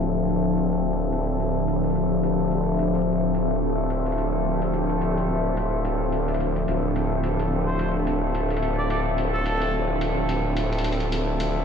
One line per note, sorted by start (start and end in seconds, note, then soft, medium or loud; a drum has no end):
0.00 6.66 D1 medium
0.00 11.65 D3 medium
0.00 11.65 F3 loud
0.00 2.21 A3 medium
0.00 2.21 C4 medium
0.00 11.65 C4 medium
0.00 11.65 D4 medium
0.00 2.21 E4 medium
0.00 2.21 F4 medium
0.00 11.65 G4 medium
0.00 2.21 A4 medium
0.00 11.65 C5 medium
0.00 6.64 E5 medium
0.00 11.65 E5 medium
0.00 closed hi-hat medium
0.29 closed hi-hat medium
0.57 closed hi-hat medium
0.73 closed hi-hat medium
1.13 closed hi-hat medium
1.40 closed hi-hat medium
1.68 closed hi-hat medium
1.84 closed hi-hat soft
1.90 closed hi-hat medium
1.95 closed hi-hat medium
2.23 6.51 A3 medium
2.23 6.51 C4 medium
2.23 6.51 E4 medium
2.23 6.51 F4 medium
2.23 6.51 A4 medium
2.23 closed hi-hat medium
2.51 closed hi-hat medium
2.79 closed hi-hat medium
2.95 closed hi-hat medium
3.35 closed hi-hat medium
3.90 closed hi-hat medium
4.06 closed hi-hat soft
4.12 closed hi-hat medium
4.18 closed hi-hat medium
4.62 closed hi-hat medium
4.74 closed hi-hat medium
4.90 closed hi-hat soft
5.01 closed hi-hat medium
5.17 closed hi-hat medium
5.57 closed hi-hat medium
5.85 closed hi-hat medium
6.12 closed hi-hat medium
6.28 closed hi-hat soft
6.34 closed hi-hat medium
6.40 closed hi-hat medium
6.56 closed hi-hat soft
6.68 11.65 D1 medium
6.68 11.10 A3 medium
6.68 11.10 C4 medium
6.68 11.65 D4 medium
6.68 11.10 E4 medium
6.68 11.10 F4 medium
6.68 11.10 A4 medium
6.68 closed hi-hat medium
6.96 closed hi-hat medium
7.24 closed hi-hat medium
7.39 closed hi-hat medium
7.67 7.89 C5 medium
7.79 closed hi-hat medium
8.07 closed hi-hat medium
8.35 closed hi-hat medium
8.50 closed hi-hat soft
8.57 closed hi-hat medium
8.63 closed hi-hat medium
8.78 8.86 D5 medium
8.90 9.00 D5 medium
8.90 closed hi-hat medium
9.18 closed hi-hat medium
9.34 9.74 A4 medium
9.46 closed hi-hat medium
9.62 closed hi-hat medium
10.01 closed hi-hat medium
10.29 closed hi-hat medium
10.57 closed hi-hat medium
10.73 closed hi-hat soft
10.78 closed hi-hat medium
10.84 closed hi-hat medium
10.92 closed hi-hat soft
11.00 closed hi-hat soft
11.12 11.65 A3 medium
11.12 11.65 C4 medium
11.12 11.65 E4 medium
11.12 11.65 F4 medium
11.12 11.65 A4 medium
11.12 closed hi-hat medium
11.40 closed hi-hat medium